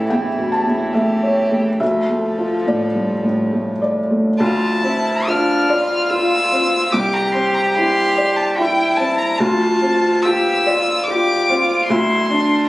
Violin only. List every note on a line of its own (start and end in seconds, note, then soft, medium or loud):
0.00 0.13 A4 medium
0.11 0.95 E4 medium
0.93 1.81 G4 medium
1.79 3.96 A4 medium
4.39 5.29 A5 loud
5.27 6.11 F6 medium
6.09 6.93 E6 loud
6.92 7.15 D6 loud
7.14 7.34 A#5 medium
7.32 7.56 C6 medium
7.54 7.77 A#5 medium
7.75 8.38 C6 loud
8.37 8.56 A5 medium
8.56 8.98 G5 loud
8.97 9.20 A5 medium
9.18 9.39 A#5 medium
9.38 10.24 A5 loud
10.22 11.06 E6 loud
11.04 11.85 D6 loud
11.86 12.67 C6 loud